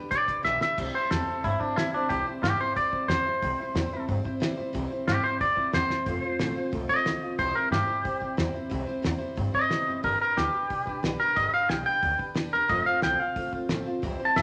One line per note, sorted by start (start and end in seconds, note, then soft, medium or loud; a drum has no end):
0.00 0.10 D4 medium
0.00 0.11 G4 medium
0.00 0.11 B4 medium
0.10 0.27 B1 medium
0.10 0.27 G3 medium
0.10 0.28 D4 medium
0.10 0.28 G4 medium
0.10 0.25 B4 medium
0.10 0.43 D5 loud
0.10 kick loud
0.10 closed hi-hat medium
0.26 0.43 F1 medium
0.26 0.42 D4 soft
0.26 0.44 G4 medium
0.26 0.44 B4 medium
0.26 kick medium
0.26 closed hi-hat medium
0.43 0.60 B1 medium
0.43 0.60 G3 medium
0.43 0.60 D4 medium
0.43 0.61 G4 medium
0.43 0.59 B4 medium
0.43 0.61 E5 loud
0.43 snare medium
0.60 0.78 D4 soft
0.60 0.78 G4 soft
0.60 0.77 B4 medium
0.60 0.78 E5 loud
0.60 muted upright bass stroke medium
0.60 snare medium
0.77 0.93 C2 medium
0.77 0.94 C3 medium
0.77 0.94 E3 medium
0.77 0.94 G3 medium
0.77 0.95 C4 medium
0.77 0.94 E4 medium
0.77 0.93 C5 loud
0.77 kick loud
0.77 crash loud
0.93 1.10 C4 soft
0.93 1.11 E4 medium
0.93 1.10 C5 medium
0.93 1.11 C5 medium
0.93 muted upright bass stroke medium
1.11 1.27 E2 medium
1.11 1.27 C3 medium
1.11 1.27 E3 medium
1.11 1.28 G3 medium
1.11 1.28 C4 medium
1.11 1.27 E4 medium
1.11 1.43 A4 medium
1.11 1.26 C5 medium
1.11 snare loud
1.11 open hi-hat soft
1.27 1.42 G3 soft
1.27 1.43 C4 soft
1.27 1.44 E4 medium
1.27 1.44 C5 medium
1.27 muted upright bass stroke medium
1.43 1.60 G2 loud
1.43 1.60 G3 medium
1.43 1.60 C4 medium
1.43 1.60 E4 medium
1.43 1.58 C5 medium
1.43 kick loud
1.43 open hi-hat soft
1.60 1.78 G3 soft
1.60 1.77 C4 soft
1.60 1.76 D4 medium
1.60 1.77 E4 medium
1.60 1.76 C5 soft
1.60 muted upright bass stroke medium
1.60 kick medium
1.76 1.93 A2 medium
1.76 1.93 C3 medium
1.76 1.94 E3 medium
1.76 1.94 G3 medium
1.76 1.94 C4 medium
1.76 1.93 E4 medium
1.76 1.94 E4 medium
1.76 1.93 C5 medium
1.76 snare loud
1.76 open hi-hat medium
1.93 2.09 A2 medium
1.93 2.09 C4 medium
1.93 2.10 D4 medium
1.93 2.10 E4 medium
1.93 2.10 C5 medium
1.97 2.09 G3 soft
2.09 2.26 C2 medium
2.09 2.26 C3 medium
2.09 2.26 E3 medium
2.09 2.26 G3 medium
2.09 2.26 C4 medium
2.09 2.27 E4 medium
2.09 2.26 G4 medium
2.09 2.25 C5 loud
2.09 kick loud
2.09 open hi-hat medium
2.26 2.42 G3 soft
2.26 2.42 C4 medium
2.26 2.43 E4 soft
2.26 2.43 C5 medium
2.26 muted upright bass stroke medium
2.42 2.58 G2 loud
2.42 2.59 C3 medium
2.42 2.59 E3 medium
2.42 2.60 G3 medium
2.42 2.60 C4 medium
2.42 2.59 E4 medium
2.42 2.59 G4 loud
2.42 2.57 C5 medium
2.42 snare loud
2.42 open hi-hat soft
2.59 2.74 G3 soft
2.59 2.75 C4 medium
2.59 2.76 E4 medium
2.59 2.76 C5 medium
2.59 muted upright bass stroke medium
2.76 2.92 E2 medium
2.76 2.92 G3 medium
2.76 2.93 C4 medium
2.76 2.92 E4 medium
2.76 2.90 C5 medium
2.76 3.08 D5 medium
2.76 kick loud
2.76 open hi-hat medium
2.92 3.07 A1 medium
2.92 3.08 G3 soft
2.92 3.09 C4 soft
2.92 3.09 E4 soft
2.92 3.09 C5 medium
2.92 kick medium
3.08 3.24 E2 medium
3.08 3.25 C3 medium
3.08 3.25 E3 medium
3.08 3.26 G3 medium
3.08 3.26 C4 medium
3.08 3.25 E4 medium
3.08 4.05 C5 loud
3.08 3.24 C5 medium
3.08 snare loud
3.08 open hi-hat medium
3.25 3.42 G3 medium
3.25 3.42 C4 soft
3.25 3.42 E4 medium
3.25 3.42 C5 medium
3.25 muted upright bass stroke medium
3.42 3.57 C2 loud
3.42 3.58 C3 medium
3.42 3.59 E3 medium
3.42 3.59 G3 medium
3.42 3.59 C4 medium
3.42 3.58 E4 medium
3.42 3.57 C5 medium
3.42 kick loud
3.42 open hi-hat medium
3.58 3.74 G3 medium
3.58 3.75 C4 soft
3.58 3.75 E4 medium
3.58 3.75 C5 medium
3.58 muted upright bass stroke medium
3.74 3.90 E2 medium
3.74 3.91 C3 medium
3.74 3.92 E3 medium
3.74 3.92 G3 medium
3.74 3.92 C4 medium
3.74 3.92 E4 medium
3.74 3.91 C5 medium
3.74 snare loud
3.74 open hi-hat medium
3.92 4.07 G3 medium
3.92 4.08 C4 medium
3.92 4.09 E4 medium
3.92 4.08 C5 medium
3.92 muted upright bass stroke medium
4.08 4.24 G2 medium
4.08 4.24 G3 medium
4.08 4.25 C4 medium
4.08 4.24 E4 medium
4.08 4.23 C5 medium
4.08 kick loud
4.08 open hi-hat soft
4.24 4.40 G3 medium
4.24 4.40 C4 medium
4.24 4.41 E4 medium
4.24 4.41 C5 medium
4.24 muted upright bass stroke medium
4.24 kick medium
4.40 4.57 A2 medium
4.40 4.57 C3 loud
4.40 4.57 E3 loud
4.40 4.58 G3 medium
4.40 4.58 C4 loud
4.40 4.57 E4 loud
4.40 4.56 C5 medium
4.40 snare loud
4.40 open hi-hat soft
4.57 4.74 A2 medium
4.57 4.73 G3 medium
4.57 4.73 C4 medium
4.57 4.73 E4 medium
4.57 4.74 C5 medium
4.73 4.90 C2 medium
4.73 4.90 C3 medium
4.73 4.90 E3 medium
4.73 4.91 G3 medium
4.73 4.91 C4 loud
4.73 4.91 E4 loud
4.73 4.89 C5 loud
4.73 kick loud
4.73 open hi-hat medium
4.90 5.07 G3 soft
4.90 5.07 C4 medium
4.90 5.08 E4 medium
4.90 5.07 C5 medium
4.90 muted upright bass stroke medium
5.07 5.23 G2 medium
5.07 5.24 C3 medium
5.07 5.24 E3 medium
5.07 5.24 G3 medium
5.07 5.24 C4 medium
5.07 5.23 E4 medium
5.07 5.23 G4 medium
5.07 5.22 C5 medium
5.07 snare loud
5.07 open hi-hat soft
5.23 5.39 G3 medium
5.23 5.40 C4 medium
5.23 5.40 E4 medium
5.23 5.40 C5 medium
5.23 muted upright bass stroke medium
5.40 5.56 E2 medium
5.40 5.57 G3 medium
5.40 5.56 C4 medium
5.40 5.55 E4 medium
5.40 5.54 C5 medium
5.40 5.73 D5 medium
5.40 kick loud
5.40 open hi-hat soft
5.55 5.73 A1 medium
5.55 5.72 G3 medium
5.55 5.73 C4 soft
5.55 5.73 E4 medium
5.55 5.72 C5 medium
5.55 kick medium
5.73 5.89 E2 loud
5.73 5.89 C3 medium
5.73 5.90 E3 medium
5.73 5.90 G3 medium
5.73 5.90 C4 medium
5.73 5.88 E4 medium
5.73 6.70 C5 loud
5.73 5.88 C5 medium
5.73 snare loud
5.73 open hi-hat medium
5.89 6.06 G3 soft
5.89 6.06 C4 medium
5.89 6.06 E4 medium
5.89 6.06 C5 medium
5.89 muted upright bass stroke medium
5.89 snare medium
6.06 6.22 F1 loud
6.06 6.23 F3 medium
6.06 6.23 A3 medium
6.06 6.23 C4 medium
6.06 6.23 F4 medium
6.06 6.21 C5 medium
6.06 kick loud
6.06 open hi-hat medium
6.22 6.39 C4 soft
6.22 6.39 F4 medium
6.22 6.39 C5 medium
6.22 muted upright bass stroke medium
6.39 6.55 A1 medium
6.39 6.56 F3 medium
6.39 6.56 A3 medium
6.39 6.56 C4 medium
6.39 6.55 F4 medium
6.39 6.53 C5 loud
6.39 snare loud
6.39 open hi-hat medium
6.54 6.72 C4 medium
6.54 6.72 F4 medium
6.54 6.72 C5 medium
6.54 muted upright bass stroke medium
6.72 6.88 C2 medium
6.72 6.89 A3 medium
6.72 6.89 C4 medium
6.72 6.89 F4 medium
6.72 6.87 C5 medium
6.72 kick loud
6.72 open hi-hat soft
6.89 7.05 C4 soft
6.89 7.05 F4 soft
6.89 7.05 C5 medium
6.89 7.37 D#5 loud
6.89 muted upright bass stroke medium
6.89 kick medium
7.04 7.22 D2 medium
7.04 7.21 F3 medium
7.04 7.22 A3 medium
7.04 7.22 C4 medium
7.04 7.22 F4 medium
7.04 7.20 C5 medium
7.04 snare loud
7.04 open hi-hat medium
7.21 7.38 D2 medium
7.21 7.39 C4 medium
7.21 7.39 F4 medium
7.21 7.38 C5 medium
7.38 7.54 C2 medium
7.38 7.55 C3 medium
7.38 7.55 E3 medium
7.38 7.55 G3 medium
7.38 7.55 C4 medium
7.38 7.54 E4 medium
7.38 7.55 C5 loud
7.38 7.53 C5 medium
7.38 kick loud
7.38 open hi-hat medium
7.54 7.71 G3 soft
7.54 7.72 C4 soft
7.54 7.72 E4 medium
7.54 7.71 A#4 medium
7.54 7.71 C5 medium
7.54 muted upright bass stroke medium
7.71 7.87 G2 medium
7.71 7.88 C3 medium
7.71 7.88 E3 medium
7.71 7.89 G3 medium
7.71 7.89 C4 medium
7.71 7.87 E4 medium
7.71 8.36 G4 medium
7.71 7.86 C5 medium
7.71 snare loud
7.71 open hi-hat soft
7.87 8.02 G3 soft
7.87 8.03 C4 medium
7.87 8.04 E4 medium
7.87 8.04 C5 medium
7.87 muted upright bass stroke medium
8.04 8.20 E2 medium
8.04 8.21 G3 medium
8.04 8.21 C4 medium
8.04 8.20 E4 medium
8.04 8.19 C5 medium
8.04 kick loud
8.04 open hi-hat soft
8.20 8.37 A1 medium
8.20 8.36 G3 medium
8.20 8.37 C4 medium
8.20 8.37 E4 medium
8.20 8.37 C5 medium
8.20 kick medium
8.37 8.54 E2 loud
8.37 8.54 C3 medium
8.37 8.54 E3 medium
8.37 8.54 G3 loud
8.37 8.55 C4 medium
8.37 8.53 E4 loud
8.37 8.53 C5 loud
8.37 snare loud
8.37 open hi-hat medium
8.54 8.69 G3 medium
8.54 8.70 C4 medium
8.54 8.70 E4 medium
8.54 8.70 C5 medium
8.54 muted upright bass stroke medium
8.70 8.87 C2 loud
8.70 8.87 C3 medium
8.70 8.87 E3 loud
8.70 8.87 G3 medium
8.70 8.87 C4 loud
8.70 8.86 E4 loud
8.70 8.85 C5 loud
8.70 kick loud
8.70 open hi-hat soft
8.87 9.02 G3 medium
8.87 9.02 C4 medium
8.87 9.03 E4 medium
8.87 9.03 C5 medium
8.87 muted upright bass stroke medium
9.02 9.20 E2 loud
9.02 9.20 C3 medium
9.02 9.20 E3 medium
9.02 9.20 G3 medium
9.02 9.19 C4 medium
9.02 9.18 E4 medium
9.02 9.17 C5 medium
9.02 snare loud
9.02 open hi-hat medium
9.18 9.34 G3 medium
9.18 9.36 C4 medium
9.18 9.36 E4 medium
9.18 9.36 C5 medium
9.18 muted upright bass stroke medium
9.36 9.53 G2 medium
9.36 9.53 G3 medium
9.36 9.54 C4 medium
9.36 9.52 E4 medium
9.36 9.51 C5 medium
9.36 kick loud
9.36 open hi-hat medium
9.52 9.70 G3 soft
9.52 9.69 C4 medium
9.52 9.70 E4 medium
9.52 9.70 C5 medium
9.52 10.03 D#5 loud
9.52 muted upright bass stroke medium
9.52 kick medium
9.69 9.86 A2 loud
9.69 9.87 C3 medium
9.69 9.87 E3 medium
9.69 9.87 G3 medium
9.69 9.87 C4 medium
9.69 9.86 E4 medium
9.69 9.85 C5 medium
9.69 snare loud
9.69 open hi-hat medium
9.87 10.03 F#1 medium
9.87 10.02 G3 medium
9.87 10.03 C4 medium
9.87 10.04 E4 medium
9.87 10.04 C5 medium
10.03 10.19 G1 medium
10.03 10.20 G3 medium
10.03 10.20 D4 medium
10.03 10.20 G4 medium
10.03 10.20 A#4 loud
10.03 10.18 B4 medium
10.03 kick loud
10.03 open hi-hat medium
10.19 10.36 D4 soft
10.19 10.37 G4 medium
10.19 10.37 A#4 medium
10.19 10.37 B4 medium
10.19 muted upright bass stroke medium
10.37 10.53 D2 medium
10.37 10.53 G3 medium
10.37 10.54 D4 medium
10.37 11.02 G4 loud
10.37 10.54 G4 medium
10.37 10.52 B4 medium
10.37 snare loud
10.37 open hi-hat soft
10.53 10.71 G4 medium
10.53 10.70 B4 medium
10.53 muted upright bass stroke medium
10.70 10.86 B1 medium
10.70 10.87 G3 medium
10.70 10.87 D4 medium
10.70 10.86 G4 medium
10.70 10.84 B4 medium
10.70 kick loud
10.70 open hi-hat soft
10.86 11.02 F1 medium
10.86 11.03 D4 medium
10.86 11.04 G4 medium
10.86 11.03 B4 medium
10.86 kick medium
11.03 11.18 B1 loud
11.03 11.20 G3 medium
11.03 11.20 D4 medium
11.03 11.19 G4 loud
11.03 11.18 B4 loud
11.03 snare loud
11.03 open hi-hat medium
11.19 11.35 D4 soft
11.19 11.36 G4 soft
11.19 11.36 A#4 loud
11.19 11.36 B4 medium
11.19 muted upright bass stroke medium
11.35 11.52 G1 loud
11.35 11.53 G3 medium
11.35 11.53 D4 medium
11.35 11.52 G4 medium
11.35 11.51 B4 medium
11.35 11.53 D#5 loud
11.35 kick loud
11.35 open hi-hat medium
11.52 11.68 D4 soft
11.52 11.69 G4 soft
11.52 11.69 B4 soft
11.52 11.69 F5 medium
11.52 muted upright bass stroke medium
11.68 11.85 B1 medium
11.68 11.86 G3 medium
11.68 11.86 D4 medium
11.68 11.86 G4 medium
11.68 11.85 B4 medium
11.68 11.85 G5 medium
11.68 snare loud
11.68 open hi-hat soft
11.86 12.02 D4 soft
11.86 12.02 G4 soft
11.86 12.03 B4 medium
11.86 12.18 G5 loud
11.86 muted upright bass stroke medium
12.02 12.19 D2 loud
12.02 12.19 G3 medium
12.02 12.20 D4 medium
12.02 12.18 G4 medium
12.02 12.17 B4 medium
12.02 kick loud
12.02 open hi-hat medium
12.18 12.34 D4 soft
12.18 12.35 G4 medium
12.18 12.35 B4 medium
12.18 muted upright bass stroke medium
12.18 kick medium
12.35 12.52 F2 medium
12.35 12.52 G3 medium
12.35 12.52 D4 medium
12.35 12.52 G4 medium
12.35 12.50 B4 loud
12.35 snare loud
12.35 open hi-hat medium
12.52 12.69 E2 medium
12.52 12.69 D4 medium
12.52 12.69 G4 medium
12.52 12.69 A#4 loud
12.52 12.69 B4 medium
12.68 12.85 F1 loud
12.68 12.85 F3 medium
12.68 12.86 A3 medium
12.68 12.86 C4 medium
12.68 12.85 F4 medium
12.68 12.83 C5 loud
12.68 12.86 D#5 medium
12.68 kick loud
12.68 open hi-hat medium
12.84 13.02 C4 soft
12.84 13.03 F4 soft
12.84 13.02 C5 medium
12.84 13.02 F5 medium
12.84 muted upright bass stroke medium
13.02 13.19 C2 medium
13.02 13.19 F3 medium
13.02 13.19 A3 medium
13.02 13.20 C4 medium
13.02 13.19 F4 medium
13.02 13.20 G5 loud
13.02 snare loud
13.02 open hi-hat soft
13.19 13.36 C4 medium
13.19 13.36 F4 medium
13.19 13.36 C5 medium
13.19 13.52 F5 loud
13.19 muted upright bass stroke medium
13.36 13.52 A1 medium
13.36 13.53 A3 medium
13.36 13.53 C4 medium
13.36 13.52 F4 medium
13.36 13.51 C5 medium
13.36 kick loud
13.36 open hi-hat medium
13.52 13.68 D2 loud
13.52 13.68 C4 soft
13.52 13.69 F4 medium
13.52 13.69 C5 medium
13.52 kick medium
13.69 13.85 A1 medium
13.69 13.86 F3 medium
13.69 13.86 A3 loud
13.69 13.86 C4 medium
13.69 13.86 F4 medium
13.69 13.84 C5 loud
13.69 snare loud
13.69 open hi-hat medium
13.86 14.03 C4 medium
13.86 14.03 F4 medium
13.86 14.02 C5 medium
13.86 muted upright bass stroke medium
14.02 14.19 C2 loud
14.02 14.19 C3 medium
14.02 14.19 E3 medium
14.02 14.20 G3 medium
14.02 14.20 C4 loud
14.02 14.20 E4 medium
14.02 14.18 C5 loud
14.02 kick loud
14.02 open hi-hat medium
14.19 14.35 G3 soft
14.19 14.35 C4 soft
14.19 14.36 E4 medium
14.19 14.36 C5 medium
14.19 muted upright bass stroke medium
14.25 14.36 A5 loud
14.35 14.42 G2 medium
14.35 14.42 C3 medium
14.35 14.42 E3 medium
14.35 14.42 G3 medium
14.35 14.42 C4 medium
14.35 14.42 E4 medium
14.35 14.42 C5 medium
14.35 14.42 E5 loud
14.35 snare loud
14.35 open hi-hat medium